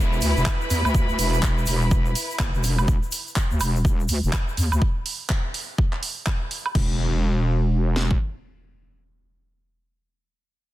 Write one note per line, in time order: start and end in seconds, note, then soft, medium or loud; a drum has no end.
0.00 0.20 E1 loud
0.00 0.93 B3 medium
0.00 0.93 E4 medium
0.00 2.88 E4 medium
0.00 2.88 B4 medium
0.00 2.88 B5 medium
0.00 downlifter medium
0.13 shaker soft
0.21 0.34 D2 loud
0.21 open hi-hat loud
0.21 shaker medium
0.37 0.45 E1 medium
0.37 shaker soft
0.46 kick loud
0.46 clap loud
0.46 high woodblock medium
0.46 shaker medium
0.61 shaker soft
0.70 0.83 E2 medium
0.70 open hi-hat loud
0.70 shaker loud
0.85 1.17 D2 loud
0.85 high woodblock medium
0.85 shaker soft
0.94 kick loud
0.94 shaker medium
1.09 shaker soft
1.19 1.66 E1 loud
1.19 open hi-hat loud
1.19 shaker medium
1.33 shaker soft
1.43 kick loud
1.43 clap loud
1.43 shaker medium
1.58 shaker soft
1.66 2.14 E1 medium
1.66 open hi-hat medium
1.66 shaker medium
1.82 shaker soft
1.91 kick loud
1.91 shaker soft
2.06 shaker soft
2.15 open hi-hat loud
2.15 shaker loud
2.30 shaker soft
2.39 2.52 F#1 loud
2.39 kick loud
2.39 clap loud
2.39 high woodblock medium
2.39 shaker soft
2.54 2.87 E1 medium
2.54 shaker soft
2.64 open hi-hat medium
2.64 shaker medium
2.78 high woodblock medium
2.78 shaker soft
2.88 3.00 E1 loud
2.88 kick loud
2.88 shaker medium
3.03 shaker soft
3.12 open hi-hat loud
3.12 shaker loud
3.27 shaker soft
3.36 kick loud
3.36 clap loud
3.36 shaker medium
3.51 3.59 D2 medium
3.51 shaker soft
3.60 4.08 E1 medium
3.60 open hi-hat medium
3.60 high woodblock medium
3.60 shaker loud
3.76 shaker soft
3.85 kick loud
3.85 shaker medium
4.00 shaker soft
4.08 4.21 D2 medium
4.08 open hi-hat loud
4.08 shaker medium
4.23 4.32 E1 loud
4.23 shaker soft
4.33 kick loud
4.33 clap loud
4.33 high woodblock medium
4.33 shaker medium
4.48 shaker soft
4.57 4.70 E2 loud
4.57 open hi-hat medium
4.57 shaker medium
4.72 4.80 D2 loud
4.72 high woodblock medium
4.72 shaker soft
4.82 kick loud
5.06 open hi-hat loud
5.30 kick loud
5.30 clap loud
5.54 open hi-hat medium
5.78 kick loud
5.93 clap soft
6.03 open hi-hat loud
6.26 kick loud
6.26 clap loud
6.26 high woodblock medium
6.51 open hi-hat medium
6.66 high woodblock medium
6.75 8.16 E1 loud
6.75 kick loud
6.75 crash medium
6.75 impact medium
7.96 snare medium
8.11 kick medium